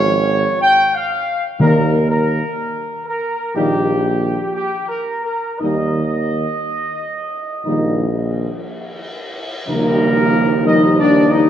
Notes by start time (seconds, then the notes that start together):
Already playing: G#1 C#5
0.61 G5
0.95 F5
1.60 D#2 D#3 G3 A#3 D#4 A#4
2.09 A#4
3.06 A#4
3.55 A#1 D#3 G3 A#3 D#4 G4
4.55 G4
4.88 A#4
5.24 A#4
5.59 D#2 D#3 G3 A#3 D#4 D#5
7.65 A#1 D#3 G3 A#3 D#4
9.66 D#2 F3 G3 A#3 A#4, tam-tam
10.65 F3 G3 D#4 D#5
10.99 D4 D5
11.30 D#4 D#5